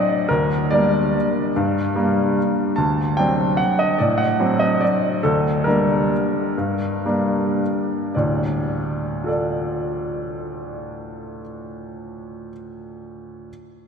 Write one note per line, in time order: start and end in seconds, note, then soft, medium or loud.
0.00 0.26 F#3 soft
0.00 0.27 C4 soft
0.00 0.27 D4 soft
0.00 0.29 D5 soft
0.29 0.71 D2 soft
0.29 0.71 A#4 medium
0.70 1.52 G3 soft
0.70 1.52 A#3 soft
0.70 1.52 D4 soft
0.70 2.77 D5 medium
1.56 1.95 G2 soft
1.96 2.74 G3 soft
1.96 2.74 A#3 soft
1.96 2.74 D4 soft
2.76 3.17 D2 soft
2.76 3.17 A5 soft
3.17 3.96 F#3 soft
3.17 3.96 C4 soft
3.17 3.96 D4 soft
3.17 3.59 G5 medium
3.57 3.79 F#5 medium
3.79 3.99 D#5 soft
3.98 4.39 A2 soft
3.98 4.19 D5 soft
4.18 4.60 F#5 medium
4.40 5.20 F#3 soft
4.40 5.20 C4 soft
4.40 5.20 D4 soft
4.59 4.81 D#5 soft
4.81 5.23 D5 soft
5.23 5.65 D2 soft
5.23 5.66 A4 soft
5.64 6.54 G3 soft
5.64 6.54 A#3 soft
5.64 6.54 D4 soft
5.64 8.16 A#4 soft
6.58 7.05 G2 soft
7.06 8.13 G3 soft
7.06 8.13 A#3 soft
7.06 8.13 D4 soft
8.15 11.40 D2 soft
8.15 11.40 A2 soft
8.15 9.27 D5 soft
9.24 12.48 F4 soft
9.24 12.50 A4 soft
9.28 12.52 D5 soft